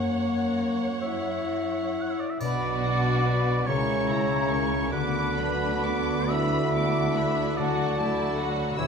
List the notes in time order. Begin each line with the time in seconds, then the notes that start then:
Already playing: F#2 A#3 C#5 F#5
0.00 C#4
0.51 F#4
1.01 E4 C#5 E5
1.49 F#4
1.95 C#5
2.01 F#5
2.11 E5
2.21 D5
2.30 E5
2.40 B1 B2 B3 D4 F#4 B4 D5 B5, triangle
2.84 D4 D5 F#5
3.26 B3 F#4 B4 D5
3.66 C#2 C#3 C#4 E4 A#4 C#5 A#5 C#6
4.09 A#3 E4 C#5 A#5
4.49 C#4 E4 A#4 C#6
4.92 D2 D3 B3 D4 F#4 B4 B5 D6
5.36 F#3 D4 B4 B5
5.84 B3 F#4 D6
6.29 B3 D4 E4 B4 E5 B5
6.74 B3 D4 F#4 D6
7.15 D4 E4 B4 B5
7.57 D3 F#3 D4 F#4 D5 F#5 A5
7.98 F#3 A3 E4 A4 A5
8.19 B5
8.37 F#3 F#4 F#5
8.41 A4
8.78 E1 E2 E3 C#4 E4 G4 C#5 C#6 E6